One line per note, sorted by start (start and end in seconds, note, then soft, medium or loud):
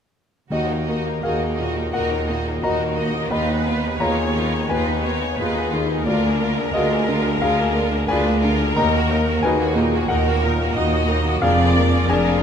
0.50 1.15 D#2 soft
0.50 1.90 D#2 soft
0.50 1.15 D#2 soft
0.50 1.54 D#3 soft
0.50 0.68 D#4 soft
0.50 0.68 F#4 soft
0.50 1.20 F#4 soft
0.50 0.68 D#5 soft
0.50 1.20 D#5 soft
0.69 0.87 A#3 soft
0.69 0.86 D#4 soft
0.69 0.87 A#4 soft
0.88 1.45 A#3 soft
0.88 1.05 D#4 soft
0.88 1.06 F#4 soft
0.88 1.06 D#5 soft
1.05 1.24 A#3 soft
1.05 1.23 D#4 soft
1.05 1.23 A#4 soft
1.23 1.86 D#2 soft
1.23 1.40 D#4 soft
1.23 1.56 F#4 soft
1.23 1.40 F#4 soft
1.23 1.90 G#4 soft
1.23 1.56 A#4 soft
1.23 1.40 D#5 soft
1.23 1.90 F5 soft
1.41 1.59 A#3 soft
1.41 1.58 D#4 soft
1.41 1.59 A#4 soft
1.57 2.15 A#2 soft
1.57 1.76 D#4 soft
1.57 1.77 F#4 soft
1.57 1.76 D#5 soft
1.75 1.94 A#3 soft
1.75 1.93 D#4 soft
1.75 1.93 A#4 soft
1.93 2.55 D#2 soft
1.93 2.50 A#3 soft
1.93 2.10 D#4 soft
1.93 2.10 F#4 soft
1.93 2.26 A#4 soft
1.93 2.59 A#4 soft
1.93 2.09 D#5 soft
1.93 2.59 F#5 medium
2.11 2.29 A#3 soft
2.11 2.28 D#4 soft
2.11 2.28 A#4 soft
2.28 2.84 A#2 soft
2.28 2.45 D#4 soft
2.28 2.46 F#4 soft
2.28 2.63 G#4 soft
2.28 2.46 D#5 soft
2.46 2.63 A#3 soft
2.46 2.63 D#4 soft
2.46 2.63 A#4 soft
2.63 3.23 D#2 soft
2.63 2.80 D#4 soft
2.63 2.94 F#4 soft
2.63 2.97 F#4 soft
2.63 2.80 F#4 soft
2.63 2.94 A#4 soft
2.63 2.79 D#5 soft
2.63 3.28 D#5 soft
2.63 3.27 A#5 medium
2.80 2.98 A#3 soft
2.80 2.98 D#4 soft
2.80 2.97 A#4 soft
2.96 3.31 A#3 soft
2.96 3.14 D#4 soft
2.96 3.15 F#4 soft
2.96 3.13 D#5 soft
2.96 3.31 D#5 soft
3.13 3.32 A#3 soft
3.13 3.31 D#4 soft
3.13 3.31 A#4 soft
3.30 4.67 D#2 soft
3.30 3.93 D#2 soft
3.30 3.48 D#4 soft
3.30 3.48 F4 soft
3.30 4.01 B4 medium
3.30 3.47 B4 soft
3.30 3.97 D#5 soft
3.30 3.97 B5 medium
3.49 3.66 B3 soft
3.49 3.66 D#4 soft
3.49 3.66 G#4 soft
3.66 4.22 B3 soft
3.66 3.84 D#4 soft
3.66 3.84 F4 soft
3.66 3.84 B4 soft
3.84 4.02 B3 soft
3.84 4.00 D#4 soft
3.84 4.01 G#4 soft
4.00 4.63 D#2 soft
4.00 4.18 D#4 soft
4.00 4.32 F4 soft
4.00 4.18 F4 soft
4.00 4.33 G#4 soft
4.00 4.18 B4 soft
4.00 4.71 C#5 soft
4.00 4.67 C#5 soft
4.00 4.67 A#5 medium
4.18 4.37 B3 soft
4.18 4.35 D#4 soft
4.18 4.36 G#4 soft
4.36 4.91 D#3 soft
4.36 4.52 D#4 soft
4.36 4.54 F4 soft
4.36 4.53 B4 soft
4.53 4.71 B3 soft
4.53 4.71 D#4 soft
4.53 4.71 G#4 soft
4.69 5.31 D#2 soft
4.69 6.02 D#2 soft
4.69 4.88 D#4 soft
4.69 4.87 F4 soft
4.69 5.68 B4 soft
4.69 4.87 B4 soft
4.69 5.05 B4 soft
4.69 5.68 G#5 medium
4.87 5.05 B3 soft
4.87 5.04 D#4 soft
4.87 5.05 G#4 soft
5.04 5.59 B3 soft
5.04 5.20 D#4 soft
5.04 5.22 F4 soft
5.04 5.21 B4 soft
5.04 5.38 C#5 soft
5.21 5.39 B3 soft
5.21 5.39 D#4 soft
5.21 5.39 G#4 soft
5.38 5.98 D#2 soft
5.38 5.55 D#4 soft
5.38 5.70 F4 soft
5.38 5.55 F4 soft
5.38 5.70 G#4 soft
5.38 5.72 B4 soft
5.38 5.54 B4 soft
5.56 5.73 B3 soft
5.56 5.71 D#4 soft
5.56 5.73 G#4 soft
5.71 6.07 D#3 soft
5.71 5.87 D#4 soft
5.71 5.89 F4 soft
5.71 6.05 G#4 soft
5.71 5.90 B4 soft
5.88 6.06 B3 soft
5.88 6.06 D#4 soft
5.88 6.07 G#4 soft
6.05 6.66 D2 medium
6.05 6.66 D2 soft
6.05 7.38 D2 soft
6.05 6.22 D4 soft
6.05 6.22 F4 soft
6.05 6.71 F4 soft
6.05 8.05 A#4 medium
6.05 6.22 A#4 soft
6.05 6.70 D5 medium
6.23 6.41 A#3 soft
6.23 6.40 D4 soft
6.23 6.40 G#4 soft
6.40 6.95 A#3 soft
6.40 6.56 D4 soft
6.40 6.58 F4 soft
6.40 6.57 A#4 soft
6.57 6.75 A#3 soft
6.57 6.72 D4 soft
6.57 6.75 G#4 soft
6.73 7.34 D2 medium
6.73 7.34 D2 soft
6.73 6.89 D4 soft
6.73 6.90 F4 soft
6.73 7.05 F4 soft
6.73 7.38 F#4 soft
6.73 7.05 G#4 soft
6.73 6.90 A#4 soft
6.73 7.38 D#5 medium
6.90 7.08 A#3 soft
6.90 7.05 D4 soft
6.90 7.07 G#4 soft
7.07 7.62 D3 soft
7.07 7.23 D4 soft
7.07 7.24 F4 soft
7.07 7.25 A#4 soft
7.24 7.42 A#3 soft
7.24 7.41 D4 soft
7.24 7.42 G#4 soft
7.41 8.01 D2 soft
7.41 8.01 D2 medium
7.41 8.73 D2 soft
7.41 7.57 D4 soft
7.41 7.58 F4 soft
7.41 8.05 G#4 soft
7.41 7.57 A#4 soft
7.41 8.05 F5 medium
7.58 7.75 A#3 soft
7.58 7.73 D4 soft
7.58 7.75 G#4 soft
7.74 8.29 A#3 soft
7.74 7.91 D4 soft
7.74 7.92 F4 soft
7.74 7.92 A#4 soft
7.92 8.09 A#3 soft
7.92 8.08 D4 soft
7.92 8.09 G#4 soft
8.08 8.69 D2 medium
8.08 8.24 D4 medium
8.08 8.25 F4 soft
8.08 8.41 F4 soft
8.08 8.41 G#4 medium
8.08 8.25 A#4 soft
8.08 8.43 B4 soft
8.08 8.73 D5 medium
8.08 8.73 G#5 medium
8.25 8.43 A#3 soft
8.25 8.41 D4 soft
8.25 8.44 G#4 soft
8.42 8.78 D3 soft
8.42 8.59 D4 soft
8.42 8.60 F4 soft
8.42 9.40 A#4 medium
8.42 8.61 A#4 soft
8.59 8.77 A#3 soft
8.59 8.77 D4 soft
8.59 8.78 G#4 soft
8.76 9.35 D#2 medium
8.76 9.36 D#2 medium
8.76 10.06 D#2 medium
8.76 8.92 D#4 soft
8.76 8.94 A#4 soft
8.76 9.39 D#5 medium
8.76 9.39 A#5 medium
8.94 9.10 A#3 soft
8.94 9.10 F#4 soft
8.94 9.12 F#4 soft
9.10 9.63 A#3 medium
9.10 9.27 D#4 soft
9.10 9.28 A#4 soft
9.27 9.43 A#3 soft
9.27 9.43 F#4 soft
9.27 9.45 F#4 soft
9.42 10.01 D#2 medium
9.42 9.73 D#4 soft
9.42 9.59 D#4 soft
9.42 9.73 F#4 soft
9.42 10.09 G#4 medium
9.42 9.60 A#4 soft
9.42 10.06 B4 medium
9.42 10.05 G#5 medium
9.60 9.76 A#3 soft
9.60 9.76 F#4 soft
9.60 9.78 F#4 soft
9.75 10.29 A#2 soft
9.75 9.92 D#4 soft
9.79 9.94 A#4 soft
9.93 10.09 A#3 soft
9.93 10.09 F#4 soft
9.93 10.11 F#4 soft
10.08 10.67 D#2 medium
10.08 10.68 D#2 medium
10.08 10.63 A#3 soft
10.08 10.25 D#4 soft
10.08 10.76 A#4 medium
10.08 11.05 A#4 medium
10.08 10.26 A#4 soft
10.08 11.04 F#5 medium
10.27 10.44 A#3 soft
10.27 10.43 F#4 soft
10.27 10.44 F#4 soft
10.43 10.96 A#2 soft
10.43 10.60 D#4 soft
10.43 10.60 A#4 soft
10.61 10.77 A#3 soft
10.61 10.76 F#4 soft
10.61 10.77 F#4 soft
10.75 11.34 D#2 medium
10.75 11.05 D#4 soft
10.75 10.92 D#4 soft
10.75 11.06 F#4 soft
10.75 10.91 A#4 soft
10.75 11.42 D#5 medium
10.92 11.09 A#3 soft
10.92 11.08 F#4 soft
10.92 11.09 F#4 soft
11.07 11.42 A#3 soft
11.07 11.25 D#4 soft
11.07 11.25 A#4 soft
11.25 11.42 A#3 soft
11.25 11.42 F#4 soft
11.41 12.01 F1 medium
11.41 12.01 F2 medium
11.41 12.43 F2 medium
11.41 11.58 D4 medium
11.41 12.06 G#4 medium
11.41 11.58 A#4 soft
11.41 12.08 D5 medium
11.41 12.05 F5 medium
11.59 11.76 A#3 soft
11.59 11.77 F4 medium
11.59 11.76 G#4 soft
11.75 12.29 A#3 soft
11.75 11.93 D4 soft
11.75 11.93 A#4 soft
11.93 12.10 A#3 soft
11.93 12.09 F4 soft
11.93 12.09 G#4 medium
12.08 12.43 F1 medium
12.08 12.43 F2 medium
12.08 12.24 D4 soft
12.08 12.38 D4 soft
12.08 12.39 G#4 medium
12.08 12.41 A#4 medium
12.08 12.24 A#4 medium
12.08 12.43 D5 medium
12.08 12.43 G#5 medium
12.25 12.41 A#3 soft
12.25 12.41 F4 soft
12.25 12.41 G#4 soft
12.39 12.43 G#4 medium
12.39 12.43 A#4 soft